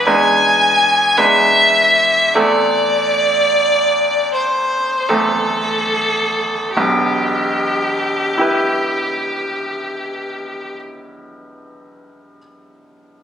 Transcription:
Already playing: grand piano E2 G#3 D4 B4
0.05 grand piano E2 G#3 D4 B4, violin G#5
1.17 grand piano E2 G#3 D4 B4, violin E5
2.34 grand piano E2 A3 C4 A4, violin D5
4.34 violin C5
5.09 grand piano E2 A3 C4 A4, violin A4
6.74 grand piano E1 B1, violin G4
8.38 grand piano E4 G4 B4

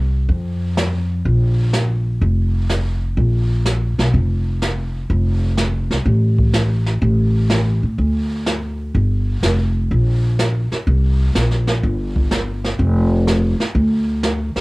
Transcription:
Already playing: upright bass C2
0.29 upright bass F2, brush sweep, kick
0.77 snare, hi-hat pedal
1.25 upright bass A#1, brush sweep, kick
1.73 snare, hi-hat pedal
2.21 upright bass F1, brush sweep, kick
2.69 snare, hi-hat pedal
3.17 upright bass A#1, brush sweep, kick
3.65 snare, hi-hat pedal
3.98 upright bass B1, snare
4.14 upright bass F1, brush sweep, kick
4.62 snare, hi-hat pedal
5.10 upright bass F1, brush sweep, kick
5.57 snare, hi-hat pedal
5.91 upright bass C2, snare
6.06 upright bass A1, brush sweep, kick
6.38 kick
6.53 snare, hi-hat pedal
6.86 snare
7.02 upright bass A1, brush sweep, kick
7.50 snare, hi-hat pedal
7.83 upright bass A2
7.98 upright bass D2, brush sweep, kick
8.46 snare, hi-hat pedal
8.94 upright bass G1, brush sweep, kick
9.43 upright bass F1, snare, hi-hat pedal
9.91 upright bass A#1, brush sweep, kick
10.39 snare, hi-hat pedal
10.72 muted upright bass stroke, snare
10.87 upright bass C2, brush sweep, kick
11.35 upright bass A#1, snare, hi-hat pedal
11.51 snare
11.67 snare
11.83 upright bass G1, brush sweep, kick
12.16 kick
12.31 snare, hi-hat pedal
12.64 snare
12.79 upright bass F1, brush sweep, kick
13.27 snare, hi-hat pedal
13.60 muted upright bass stroke, snare
13.75 upright bass D2, brush sweep, kick
14.23 snare, hi-hat pedal
14.56 muted upright bass stroke, snare

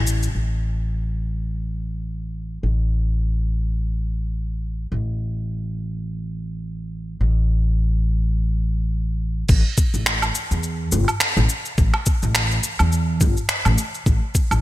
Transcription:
Already playing: upright bass A1
0.07 shaker
0.23 shaker
0.35 upright bass A1
2.63 upright bass A1
4.92 upright bass A1
7.21 upright bass A1
9.49 upright bass A1, kick, crash, shaker
9.77 kick, shaker
9.94 upright bass A1, shaker
10.06 finger snap, shaker
10.22 low woodblock, shaker
10.35 shaker
10.51 upright bass E2, shaker
10.63 shaker
10.92 upright bass G1, shaker
11.08 low woodblock, shaker
11.20 finger snap, shaker
11.37 upright bass A1, shaker
11.49 shaker
11.65 shaker
11.78 upright bass A1, kick, shaker
11.94 finger snap, low woodblock
12.06 kick, shaker
12.23 upright bass A1, shaker
12.35 finger snap, shaker
12.51 shaker
12.63 shaker
12.79 upright bass E2, low woodblock, shaker
12.92 shaker
13.21 upright bass G1, kick, shaker
13.37 shaker
13.49 finger snap, shaker
13.65 upright bass A1, low woodblock, shaker
13.78 shaker
13.94 shaker
14.06 upright bass A1, kick, shaker
14.35 kick, shaker
14.51 upright bass A1, low woodblock, shaker

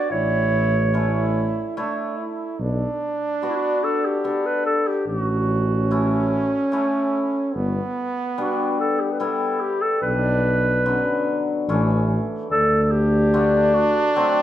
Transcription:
Already playing: hammered dulcimer G3, trombone F#4, clarinet D5
0.11 tuba A1, trombone E4, clarinet C#5
0.94 hammered dulcimer A3 C#4 E4, trombone E4
1.77 hammered dulcimer A3 E4 C#5, trombone D4
2.18 trombone E4
2.59 tuba B1, trombone D4
3.42 hammered dulcimer B3 D4 F#4, clarinet F#4
3.50 clarinet E4
3.56 clarinet F#4
3.84 clarinet A4
4.05 clarinet G4
4.24 hammered dulcimer B3 D4 A4
4.46 clarinet B4
4.66 clarinet A4
4.87 clarinet G4
5.06 tuba A1, trombone C#4, clarinet F#4
5.91 hammered dulcimer A3 C#4 E4
6.72 hammered dulcimer A3 C#4 E4
7.54 tuba G1, trombone B3
8.38 hammered dulcimer G3 B3 D4, clarinet F#4
8.80 clarinet A4
9.00 clarinet G4
9.12 clarinet B4
9.19 hammered dulcimer G3 B3 E4, clarinet A4
9.60 clarinet G4
9.82 clarinet A4
10.02 tuba B1, trombone D4, clarinet B4
10.86 hammered dulcimer D3 F#3 B3, trombone C#4
11.27 trombone B3
11.68 tuba A1, hammered dulcimer E3 A3 C#4, trombone A3
12.51 tuba D2, trombone D4, clarinet A4
12.83 clarinet A4
12.91 clarinet G4
13.34 hammered dulcimer D3 A3 D4
13.74 clarinet F#4
14.16 hammered dulcimer F#3 A3 C4, clarinet F#4

